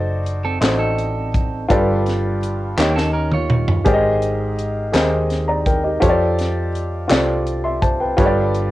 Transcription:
0.00 0.58 F#1 medium
0.00 0.19 D#4 medium
0.00 0.19 F#4 medium
0.00 0.20 A4 medium
0.00 0.20 C5 medium
0.00 0.21 D5 medium
0.26 closed hi-hat soft
0.45 0.61 C4 medium
0.45 0.61 A4 medium
0.61 1.66 A1 medium
0.61 1.27 D#4 medium
0.61 0.79 D#4 medium
0.61 1.28 F#4 medium
0.61 1.28 A4 medium
0.61 0.79 C5 medium
0.61 1.28 C5 medium
0.61 1.29 D#5 medium
0.61 snare medium
0.61 clap medium
0.61 closed hi-hat medium
0.79 1.66 C4 soft
0.79 1.66 A4 medium
0.98 closed hi-hat soft
1.34 kick medium
1.34 closed hi-hat soft
1.69 2.74 G1 medium
1.69 2.74 G2 medium
1.69 2.35 F4 medium
1.69 2.36 G4 medium
1.69 2.36 A4 medium
1.69 2.37 B4 medium
1.69 2.37 D5 medium
1.69 kick medium
1.69 closed hi-hat medium
2.06 snare soft
2.06 closed hi-hat soft
2.43 closed hi-hat soft
2.77 3.82 D#2 medium
2.77 3.82 D#3 medium
2.77 2.96 A#3 soft
2.77 3.44 D#4 medium
2.77 3.44 G4 medium
2.77 2.95 G4 medium
2.77 3.44 A#4 medium
2.77 3.45 C#5 medium
2.77 3.45 D#5 medium
2.77 snare soft
2.77 clap medium
2.96 3.13 C#4 medium
2.96 3.13 A4 medium
2.96 snare soft
3.13 3.31 C#4 medium
3.13 3.31 A#4 medium
3.32 3.85 F4 medium
3.32 3.84 C#5 medium
3.32 mid tom medium
3.50 mid tom medium
3.68 floor tom medium
3.85 4.90 G#1 medium
3.85 4.90 G#2 medium
3.85 4.51 G4 medium
3.85 4.52 G#4 medium
3.85 4.52 A#4 medium
3.85 4.52 C5 medium
3.85 3.93 D5 medium
3.85 kick medium
3.85 closed hi-hat medium
3.94 4.56 D#5 medium
4.22 closed hi-hat soft
4.59 closed hi-hat soft
4.92 5.98 D#2 medium
4.92 5.29 G4 medium
4.92 5.30 G#4 medium
4.92 5.30 A#4 medium
4.92 5.30 C5 medium
4.92 5.31 D#5 medium
4.92 snare medium
4.92 clap medium
4.92 closed hi-hat medium
5.30 snare soft
5.30 closed hi-hat soft
5.48 5.66 D5 soft
5.48 5.65 A#5 medium
5.66 5.84 A#4 medium
5.66 5.83 G5 medium
5.66 kick medium
5.66 closed hi-hat soft
5.84 5.99 G4 soft
5.84 6.18 D#5 medium
6.00 7.06 F2 medium
6.00 6.67 F4 medium
6.00 6.68 G4 medium
6.00 6.68 A4 medium
6.00 6.68 C5 medium
6.00 6.09 C#5 medium
6.00 kick medium
6.00 closed hi-hat medium
6.09 6.72 D5 medium
6.39 snare soft
6.39 closed hi-hat soft
6.75 closed hi-hat soft
7.08 8.14 C2 medium
7.08 7.75 F4 medium
7.08 7.75 G4 medium
7.08 7.76 A4 medium
7.08 7.46 C5 medium
7.08 7.46 D5 medium
7.08 clap medium
7.08 closed hi-hat medium
7.12 snare medium
7.47 closed hi-hat soft
7.64 7.81 E5 soft
7.64 7.81 C6 medium
7.82 8.00 C5 medium
7.82 7.99 A5 medium
7.82 kick medium
7.82 closed hi-hat soft
8.00 8.17 B4 soft
8.00 8.34 G5 medium
8.16 8.71 G1 medium
8.16 8.71 G2 medium
8.16 8.71 F4 medium
8.16 8.71 G4 medium
8.16 8.71 A4 medium
8.16 8.71 B4 medium
8.16 8.25 C#5 medium
8.16 kick loud
8.16 closed hi-hat medium
8.26 8.71 D5 medium
8.54 closed hi-hat soft

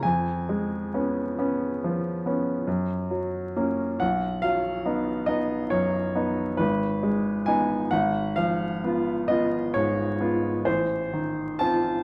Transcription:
0.03 2.63 F2 soft
0.03 4.00 G#5 medium
0.49 1.20 G#3 soft
0.94 1.34 B3 soft
0.94 1.34 C#4 soft
1.38 1.79 B3 soft
1.38 1.79 C#4 soft
1.84 2.51 F3 soft
2.26 2.63 B3 soft
2.26 2.64 C#4 soft
2.67 3.97 F#2 soft
3.10 3.83 F#3 soft
3.56 3.97 A#3 soft
3.56 3.97 C#4 soft
4.00 6.56 B1 soft
4.00 4.43 F#5 medium
4.42 5.11 F#3 soft
4.42 5.27 F5 medium
4.85 5.24 B3 soft
4.85 5.24 D#4 soft
5.26 5.68 B3 soft
5.26 5.68 D#4 soft
5.26 5.71 D#5 medium
5.70 6.42 F#2 soft
5.70 6.59 C#5 medium
6.15 6.55 B3 soft
6.15 6.56 D#4 soft
6.57 7.88 G#1 soft
6.57 7.47 B4 medium
7.03 7.75 G#3 soft
7.46 7.89 B3 soft
7.46 7.89 D#4 soft
7.46 7.92 G#5 medium
7.91 10.63 G#1 soft
7.91 8.37 F#5 medium
8.36 9.12 F3 soft
8.36 9.29 F5 medium
8.84 9.26 B3 soft
8.84 9.26 F4 soft
9.28 9.71 B3 soft
9.28 9.71 F4 soft
9.28 9.74 D#5 medium
9.74 10.49 G#2 soft
9.74 10.66 C#5 medium
10.21 10.63 B3 soft
10.21 10.63 F4 soft
10.65 12.03 A1 soft
10.65 11.60 C5 medium
11.13 11.89 D#3 soft
11.59 12.03 C4 soft
11.59 12.03 F4 soft
11.59 12.03 A5 medium

